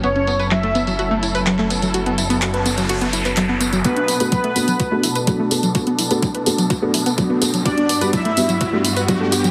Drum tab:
HH |xxxxxxxxx-xxx-xx|xxxxxxxxxxxxx-xx|xxoxxxoxx-oxx-ox|xxoxxxoxx-oxx-ox|
TB |x-xxx-xxx-xxx-xx|x-xxx-xxx-xxx-xx|x-xxx-xxx-xxx-xx|x-xxx-xxx-xxx-xx|
CP |----x-------xx--|----x------xx---|----------------|----------------|
BD |----------------|----------------|o---o---o---o---|o---o---o---o---|

HH |xxoxxxoxx-oxx-ox|
TB |x-xxx-xxx-xxx-xx|
CP |----------------|
BD |o---o---o---o---|